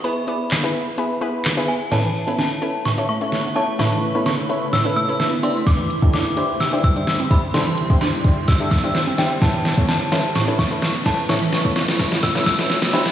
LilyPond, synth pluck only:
\new Staff \with { instrumentName = "Synth pluck" } { \time 4/4 \key a \major \tempo 4 = 128 <b e' gis' b'>16 r16 <b e' gis' d''>8 r16 <b e' gis' b'>8 r16 <b e' gis' b'>16 r16 <b e' gis' b'>8 r16 <b e' gis' b'>8 r16 | <cis' e' a' b'>8 r16 <cis' e' a' b'>8 r16 <cis' e' a' b'>8 r16 <cis' e' a' cis''>16 r16 <cis' e' a' cis''>8 r16 <cis' e' a' cis''>16 r16 | <cis' e' a' b'>8 r16 <cis' e' a' b'>8 r16 <cis' e' a' b'>8 r16 <cis' e' a' b'>16 r16 <cis' e' a' b'>8 r16 <d' e' g' c''>8~ | <d' e' g' c''>8 r16 <d' e' g' a'>8 r16 <d' e' g' c''>8 r16 <d' e' g' c''>16 r16 <d' e' g' c''>8 r16 <d' e' g' c''>16 r16 |
<d' e' g' a'>8 r16 <d' e' g' c''>8 r16 <d' e' g' c''>8 r16 <d' e' g' a'>16 r16 <d' e' g' c''>8 r16 <d' e' g' c''>16 r16 | <cis' e' a' b'>8 r16 <cis' e' a' cis''>8 r16 <cis' e' a' b'>8 r16 <cis' e' a' b'>16 r16 <cis' e' a' b'>8 r16 <cis' e' a' b'>16 r16 | <cis' e' a' cis''>8 r16 <cis' e' a' cis''>8 r16 <cis' e' a' b'>8 r16 <cis' e' a' b'>16 r16 <cis' e' a' b'>8 r16 <d' e' g' c''>8 | }